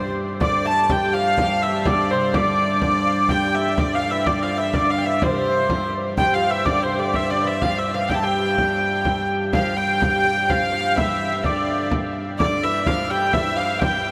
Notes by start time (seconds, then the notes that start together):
Already playing: G2 C3 C5
0.40 D3 D5, frame drum
0.65 A3 A5
0.90 G3 G5, frame drum
1.13 F3 F5
1.38 F3 F5, frame drum
1.62 E3 E5
1.85 D3 D5, frame drum
2.11 C3 C5
2.34 D3 D5, frame drum
2.82 frame drum
3.05 F5, frame drum
3.28 G3 G5, frame drum
3.54 E3 E5, frame drum
3.77 G2 D3 D5, frame drum
3.94 F3 F5
4.09 E3 E5
4.26 D3 D5, frame drum
4.42 F3 F5
4.57 E3 E5
4.74 D3 D5, frame drum
4.91 F5
4.98 G5
5.05 E3 E5 F5
5.22 C3 C5, frame drum
5.31 A#4
5.38 C5
5.70 F3, frame drum
6.17 G3 G5, frame drum
6.34 F3 F5
6.50 E3 E5
6.65 D3 D5, frame drum
6.82 C3 C5
6.99 D3 D5
7.13 E3 E5, frame drum
7.30 D3 D5
7.38 C5
7.43 E3 D5
7.47 E5
7.60 F3 F5, frame drum
7.77 E5
7.93 F3 F5
8.08 G3 G5, frame drum
8.14 A5
8.22 G3 G5
8.34 frame drum
8.58 frame drum
9.05 frame drum
9.29 frame drum
9.53 G2 F3 F5, frame drum
9.76 G3 G5, frame drum
10.00 G3 G5, frame drum
10.05 F5
10.11 G5
10.23 G3 G5, frame drum
10.48 F3 F5 G5, frame drum
10.72 F3, frame drum
10.95 E3 E5, frame drum
11.19 E5, frame drum
11.37 E3
11.44 D3 D5, frame drum
11.68 frame drum
11.91 frame drum
12.16 frame drum
12.37 D3 D5, frame drum
12.62 E3 E5, frame drum
12.86 F3 F5, frame drum
13.10 G3 G5, frame drum
13.33 E3 E5, frame drum
13.56 F3 F5, frame drum
13.79 G3 G5, frame drum
13.83 G5
14.06 frame drum